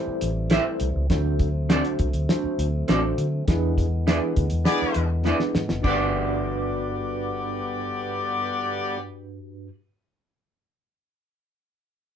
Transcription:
0.00 1.07 E3 medium
0.00 1.07 G3 medium
0.00 1.07 A3 medium
0.00 1.07 C4 medium
0.00 0.29 E4 medium
0.00 0.29 G4 medium
0.00 0.29 A4 medium
0.00 0.29 C5 medium
0.07 muted fingered electric bass stroke soft
0.21 0.57 A1 medium
0.21 closed hi-hat medium
0.50 0.87 E4 medium
0.50 0.61 E4 medium
0.50 0.88 G4 medium
0.50 0.61 G4 medium
0.50 0.88 A4 medium
0.50 0.88 C5 medium
0.50 0.62 C5 loud
0.50 0.62 E5 loud
0.50 snare loud
0.50 closed hi-hat medium
0.80 0.92 C2 medium
0.80 closed hi-hat medium
0.95 1.07 C#2 medium
1.10 1.81 D2 medium
1.10 1.95 D3 medium
1.10 3.46 D3 medium
1.10 3.45 F#3 medium
1.10 3.45 A3 medium
1.10 3.45 C4 medium
1.10 1.47 D4 medium
1.10 1.47 F#4 medium
1.10 1.47 A4 medium
1.10 1.47 C5 loud
1.10 kick loud
1.10 snare medium
1.10 closed hi-hat medium
1.39 kick medium
1.39 closed hi-hat medium
1.69 1.80 C4 medium
1.69 2.06 D4 medium
1.69 2.06 F#4 medium
1.69 1.80 F#4 medium
1.69 2.07 A4 medium
1.69 1.80 A4 loud
1.69 2.07 C5 loud
1.69 1.81 D5 loud
1.69 snare loud
1.69 closed hi-hat medium
1.85 closed hi-hat soft
1.99 2.11 C2 medium
1.99 kick medium
1.99 closed hi-hat medium
2.13 2.25 D2 medium
2.13 closed hi-hat medium
2.29 2.66 D4 medium
2.29 2.66 F#4 medium
2.29 2.66 A4 medium
2.29 2.66 C5 loud
2.29 snare loud
2.29 closed hi-hat medium
2.44 muted fingered electric bass stroke soft
2.58 2.82 D2 medium
2.58 closed hi-hat medium
2.88 3.12 A1 loud
2.88 2.98 C4 medium
2.88 3.25 D4 medium
2.88 3.25 F#4 medium
2.88 2.99 F#4 medium
2.88 3.26 A4 medium
2.88 2.99 A4 medium
2.88 3.26 C5 medium
2.88 2.99 D5 medium
2.88 snare loud
2.88 closed hi-hat medium
3.18 3.41 D3 loud
3.18 closed hi-hat medium
3.47 4.18 E2 loud
3.47 5.83 D3 medium
3.47 4.33 E3 medium
3.47 5.84 E3 medium
3.47 5.83 G#3 medium
3.47 5.83 B3 medium
3.47 3.84 D4 medium
3.47 3.85 E4 medium
3.47 3.85 G#4 medium
3.47 3.85 B4 medium
3.47 kick loud
3.47 snare medium
3.47 closed hi-hat medium
3.78 kick medium
3.78 closed hi-hat medium
4.07 4.17 B3 medium
4.07 4.44 D4 medium
4.07 4.44 E4 medium
4.07 4.17 E4 medium
4.07 4.44 G#4 medium
4.07 4.18 G#4 medium
4.07 4.44 B4 loud
4.07 4.18 D5 medium
4.07 snare loud
4.07 closed hi-hat loud
4.36 4.48 D2 medium
4.36 kick medium
4.36 closed hi-hat medium
4.50 4.63 E2 medium
4.50 closed hi-hat medium
4.64 5.07 B3 loud
4.64 5.03 D4 medium
4.64 5.03 E4 medium
4.64 5.08 G#4 medium
4.64 5.03 G#4 medium
4.64 5.04 B4 loud
4.64 5.07 D5 loud
4.64 snare loud
4.64 closed hi-hat medium
4.82 muted fingered electric bass stroke soft
4.94 5.31 E2 medium
4.94 closed hi-hat medium
5.24 5.36 B3 medium
5.24 5.62 D4 medium
5.24 5.62 E4 medium
5.24 5.36 E4 medium
5.24 5.62 G#4 medium
5.24 5.36 G#4 medium
5.24 5.62 B4 medium
5.24 5.37 D5 loud
5.24 snare medium
5.40 snare medium
5.55 5.67 G#2 medium
5.55 snare medium
5.69 5.81 F#1 medium
5.69 snare medium
5.82 9.68 G1 medium
5.82 9.68 G2 medium
5.82 8.98 D3 medium
5.82 8.98 G3 medium
5.82 8.97 B3 medium
5.82 8.98 B3 medium
5.82 9.67 D4 medium
5.82 9.72 D4 medium
5.82 9.67 F#4 medium
5.82 9.73 F#4 medium
5.82 8.97 G4 medium
5.82 9.68 G4 medium
5.82 9.69 B4 medium
5.82 8.97 D5 loud
5.82 kick medium
5.82 splash medium
5.87 9.73 B4 medium
5.87 9.74 D5 medium

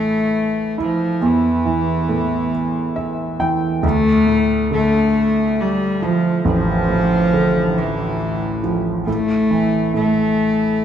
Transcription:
0.00 2.09 A2 medium
0.00 0.74 E3 soft
0.00 0.75 A3 medium
0.78 2.49 E4 soft
0.83 1.27 F3 medium
1.21 3.79 E2 medium
1.26 3.42 E3 medium
1.65 3.36 E3 soft
2.09 3.80 A2 soft
2.96 3.37 E5 medium
3.39 3.82 E3 soft
3.39 3.80 G5 medium
3.83 6.41 D2 medium
3.83 4.68 A3 medium
4.27 5.98 A2 soft
4.71 6.42 D3 soft
4.71 5.62 A3 medium
5.61 6.06 G3 medium
6.02 7.73 F3 soft
6.02 6.46 F3 medium
6.45 9.03 A1 medium
6.45 7.79 F3 medium
6.89 8.60 A2 soft
7.33 9.04 D3 soft
7.78 8.75 E3 medium
8.63 9.06 F3 soft
9.07 9.92 A2 medium
9.07 9.91 A3 medium
9.51 10.85 E3 soft
9.94 10.85 A2 soft
9.94 10.85 A3 medium

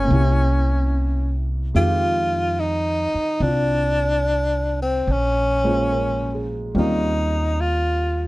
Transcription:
0.00 0.10 A3 soft
0.00 0.04 A#3 soft
0.00 1.72 A#3 soft
0.00 1.47 C#4 medium
0.07 1.71 C2 medium
0.07 1.73 C3 soft
0.07 1.75 C#4 soft
0.12 1.76 E4 soft
0.12 1.74 G4 soft
1.74 3.09 F2 medium
1.74 5.07 D#3 soft
1.74 5.07 G#3 soft
1.74 3.39 C4 soft
1.74 3.42 F4 soft
1.74 2.61 F4 medium
1.74 5.08 G4 medium
2.60 3.44 D#4 medium
3.14 muted upright bass stroke soft
3.40 5.03 C2 medium
3.40 5.07 C4 soft
3.40 5.08 D4 soft
3.40 4.80 D4 medium
3.40 5.08 F4 soft
4.82 5.13 C4 medium
5.07 6.71 A#1 medium
5.12 6.58 C#4 medium
5.64 6.75 G#3 soft
5.64 6.74 A#3 soft
5.64 6.74 C#4 soft
5.64 6.75 F4 medium
5.64 6.76 C5 soft
5.92 6.57 A#4 soft
6.35 6.93 G#4 soft
6.75 8.28 D#2 medium
6.75 8.28 G3 soft
6.75 8.28 A#3 soft
6.75 8.28 C4 soft
6.75 8.28 C#4 soft
6.75 7.62 D#4 medium
6.75 8.28 F4 medium
7.61 8.28 F4 medium

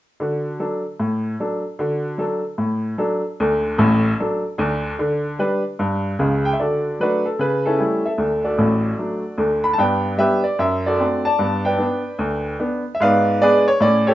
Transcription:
0.20 0.54 D3 medium
0.20 0.43 F#4 soft
0.59 0.82 F#3 soft
0.59 0.82 D4 soft
0.59 0.82 A4 soft
1.00 1.34 A2 medium
1.40 1.62 F#3 soft
1.40 1.62 D4 soft
1.40 1.62 A4 soft
1.79 2.13 D3 medium
1.79 2.02 F#4 soft
2.18 2.40 F#3 soft
2.18 2.41 D4 soft
2.18 2.41 A4 soft
2.58 2.93 A2 medium
2.98 3.20 F#3 medium
2.98 3.21 D4 soft
2.98 3.21 A4 soft
3.40 3.72 D2 medium
3.40 3.72 D3 medium
3.78 4.11 A1 medium
3.78 4.11 A2 medium
4.20 4.42 F#3 soft
4.20 4.42 D4 soft
4.20 4.42 A4 soft
4.58 4.91 D2 medium
4.58 4.91 D3 medium
4.99 5.33 D3 medium
5.39 5.61 G3 soft
5.39 5.62 D4 medium
5.39 5.62 B4 medium
5.79 6.13 G2 medium
6.19 6.51 C#2 medium
6.19 6.51 C#3 medium
6.45 6.52 G5 medium
6.53 6.60 E5 medium
6.60 6.94 D3 soft
6.60 6.98 F#4 soft
6.60 6.98 A4 soft
6.60 7.00 D5 soft
7.00 7.22 F#3 soft
7.00 7.22 A3 soft
7.00 7.25 D4 medium
7.00 7.25 F#4 medium
7.00 7.26 B4 medium
7.26 7.40 A4 soft
7.39 7.73 C#3 medium
7.39 7.66 B4 medium
7.66 8.03 C#4 soft
7.66 7.79 E4 soft
7.66 8.05 A4 medium
7.79 8.01 G3 soft
7.79 8.01 A3 soft
7.79 8.02 E4 soft
8.06 8.43 A4 soft
8.06 8.45 E5 medium
8.18 8.51 D2 soft
8.18 8.51 D3 soft
8.44 9.35 F#4 soft
8.44 9.35 A4 soft
8.44 9.39 D5 medium
8.58 8.91 A1 medium
8.58 8.91 A2 medium
8.99 9.21 F#3 soft
8.99 9.22 A3 soft
8.99 9.21 D4 soft
9.38 9.70 D2 medium
9.38 9.71 D3 medium
9.64 9.72 B5 medium
9.73 9.80 A5 medium
9.78 10.13 G2 medium
9.78 10.02 B3 soft
9.78 10.17 B4 soft
9.78 10.17 D5 soft
9.78 10.19 G5 medium
10.17 10.40 G3 soft
10.17 10.40 B3 soft
10.17 10.41 D4 soft
10.17 10.43 G4 medium
10.17 10.44 B4 medium
10.17 10.45 E5 medium
10.44 10.59 D5 medium
10.59 10.93 F#2 medium
10.59 10.85 E5 medium
10.86 11.24 F#4 medium
10.86 11.24 A4 soft
10.86 11.25 D5 medium
10.99 11.21 A3 soft
10.99 11.22 C4 soft
10.99 11.22 D4 soft
11.25 11.63 D5 medium
11.25 11.65 A5 medium
11.39 11.73 G2 medium
11.39 11.62 B3 soft
11.65 12.56 B4 soft
11.65 12.56 D5 soft
11.65 12.60 G5 medium
11.78 12.01 B3 soft
11.78 12.01 D4 soft
12.19 12.53 D2 medium
12.60 12.82 B3 medium
12.60 12.82 D4 soft
12.95 13.00 E5 medium
13.00 13.34 G#2 medium
13.00 13.24 B3 soft
13.00 13.39 B4 medium
13.00 13.39 D5 medium
13.00 13.41 F5 medium
13.41 13.63 G#3 soft
13.41 13.63 B3 soft
13.41 13.64 D4 medium
13.41 13.66 G#4 medium
13.41 13.66 B4 medium
13.41 13.67 D5 medium
13.68 13.81 C#5 medium
13.80 14.14 A2 medium
13.80 14.04 C#4 soft
13.80 14.07 D5 medium
14.07 14.14 G4 medium
14.07 14.14 A4 medium
14.07 14.14 C#5 medium

